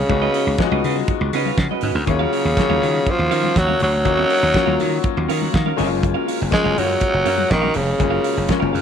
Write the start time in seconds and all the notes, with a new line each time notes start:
Already playing: C#3 G#3 B3 D#4 F#4
0.09 C#2 G#3 B3 D#4 F#4, muted clean electric guitar stroke, kick, closed hi-hat, muted conga, low conga
0.22 C#4 F#4 B4 D#5, muted conga
0.34 C#4 F#4 B4 D#5, open hi-hat
0.47 C#2
0.58 G#3 B3 D#4 F4, muted clean electric guitar stroke, kick, snare, closed hi-hat
0.67 F#4
0.72 C#2 C#4 F#4 B4 D#5, muted conga, high conga
0.84 C#3 C#4 F#4 B4 D#5, open hi-hat, low conga
0.97 muted clean electric guitar stroke, high conga
1.08 muted clean electric guitar stroke, kick, closed hi-hat, muted conga
1.21 C#2, muted clean electric guitar stroke
1.33 C#3 C#4 F#4 B4 D#5, open hi-hat
1.45 C#4 F#4 B4 F5, high conga
1.58 C#3, kick, snare, closed hi-hat, muted conga
1.71 C#4 F#4 B4 D#5, muted conga, high conga
1.81 G#2 C#4 F#4 B4 D#5, open hi-hat, low conga
1.95 D2, muted clean electric guitar stroke
2.06 D#2 C#3 F#3 A#3 C#4 E4, muted clean electric guitar stroke, kick, closed hi-hat, muted conga, low conga
2.14 F4
2.19 C#4 F#4 A#4 F5, muted conga
2.32 C#4 F#4 A#4 F5, open hi-hat
2.45 D#2, muted clean electric guitar stroke
2.57 F3 A#3 C#4 F4, muted clean electric guitar stroke, kick, snare, closed hi-hat
2.62 F#3
2.70 D#2 C#4 F#4 A#4 F5, muted conga, high conga
2.82 D#3 C#4 F#4 A#4 F5, open hi-hat, low conga
2.94 muted clean electric guitar stroke
3.07 F3, muted clean electric guitar stroke, kick, closed hi-hat, muted conga
3.19 D#2, muted clean electric guitar stroke
3.31 D#3 C#4 F#4 A#4 F5, open hi-hat
3.43 C#4 F#4 A#4 F#5, high conga
3.55 D#2 F#3, muted clean electric guitar stroke, kick, snare, closed hi-hat, muted conga
3.67 C#4 F#4 A#4 F5, muted conga, high conga
3.80 D2 F#3, muted clean electric guitar stroke, open hi-hat, low conga
3.93 muted clean electric guitar stroke
4.05 D#2 F#3 A#3 C#4 D#4, muted clean electric guitar stroke, kick, closed hi-hat, muted conga, low conga
4.17 C#4 F#4 A#4 F5, muted conga
4.29 C#4 F#4 A#4 F5, open hi-hat
4.41 D#2, muted clean electric guitar stroke
4.54 F#3 A#3 C#4 F4, muted clean electric guitar stroke, kick, snare, closed hi-hat, muted conga
4.66 D#2 C#4 F#4 A#4 F5, muted conga, high conga
4.79 D#3 C#4 F#4 A#4 F5, open hi-hat, low conga
4.92 muted clean electric guitar stroke
5.04 muted clean electric guitar stroke, kick, closed hi-hat
5.17 D#2, muted clean electric guitar stroke
5.29 D#3 C#4 F#4 A#4 F5, open hi-hat
5.41 C#4 F#4 A#4 F#5, high conga
5.53 D#3 F5, muted clean electric guitar stroke, kick, snare, closed hi-hat, muted conga
5.66 C#4 F#4 A#4 F5, muted conga, high conga
5.77 F#1 G#3 A#3 C#4 D#4 F#4 A#4 C#5 F5, open hi-hat, low conga
5.84 F4
5.90 muted clean electric guitar stroke
6.03 muted clean electric guitar stroke, kick, closed hi-hat, low conga
6.14 C#4 F#4 A#4 F5, muted conga
6.27 C#4 F#4 A#4 F5, open hi-hat
6.41 F#1, muted clean electric guitar stroke
6.51 G#3 A#3 C#4 F4, muted clean electric guitar stroke, kick, snare, closed hi-hat, muted conga
6.64 F#1 C#4 F#4 A#4 F5, muted conga, high conga
6.77 F#2 F#3 C#4 F#4 A#4 F5, open hi-hat, low conga
6.89 muted clean electric guitar stroke
7.01 muted clean electric guitar stroke, kick, closed hi-hat
7.14 F#1, muted clean electric guitar stroke
7.25 F#2 C#4 F#4 A#4 F5, open hi-hat
7.38 C#4 F#4 A#4 F#5, high conga
7.50 A#1 D#3, kick, snare, closed hi-hat, muted conga
7.61 C#4 F#4 A#4 F5, muted conga, high conga
7.74 F1 C#3, muted clean electric guitar stroke, open hi-hat, low conga
7.87 muted clean electric guitar stroke
7.98 F#1 G#3 A#3 C#4 F4, muted clean electric guitar stroke, kick, closed hi-hat, muted conga, low conga
8.10 C#4 F#4 A#4 F5, muted conga
8.23 C#4 F#4 A#4 F5, open hi-hat
8.35 F#1, muted clean electric guitar stroke
8.48 G#3 A#3 C#4 F4, muted clean electric guitar stroke, kick, snare, closed hi-hat, muted conga
8.60 F#1 C#4 F#4 A#4 F5, high conga
8.72 F#2 C#4 F#4 A#4 F5, open hi-hat, low conga